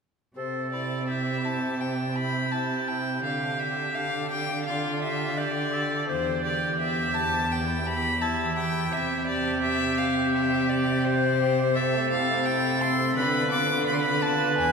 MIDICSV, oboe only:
0, 0, Header, 1, 2, 480
1, 0, Start_track
1, 0, Key_signature, 0, "major"
1, 0, Tempo, 718563
1, 245, Time_signature, 4, 2, 24, 8
1, 3123, Tempo, 707547
1, 9937, End_track
2, 0, Start_track
2, 0, Title_t, "Oboe"
2, 0, Program_c, 0, 68
2, 249, Note_on_c, 0, 69, 72
2, 726, Note_on_c, 0, 67, 70
2, 736, Note_off_c, 0, 69, 0
2, 3117, Note_off_c, 0, 67, 0
2, 3121, Note_on_c, 0, 65, 72
2, 3596, Note_on_c, 0, 67, 75
2, 3606, Note_off_c, 0, 65, 0
2, 3842, Note_on_c, 0, 69, 74
2, 3852, Note_off_c, 0, 67, 0
2, 4083, Note_on_c, 0, 67, 89
2, 4093, Note_off_c, 0, 69, 0
2, 5338, Note_off_c, 0, 67, 0
2, 5525, Note_on_c, 0, 64, 81
2, 5978, Note_off_c, 0, 64, 0
2, 5997, Note_on_c, 0, 67, 96
2, 7891, Note_off_c, 0, 67, 0
2, 7921, Note_on_c, 0, 69, 96
2, 8865, Note_off_c, 0, 69, 0
2, 8881, Note_on_c, 0, 71, 88
2, 9353, Note_off_c, 0, 71, 0
2, 9358, Note_on_c, 0, 71, 98
2, 9937, Note_off_c, 0, 71, 0
2, 9937, End_track
0, 0, End_of_file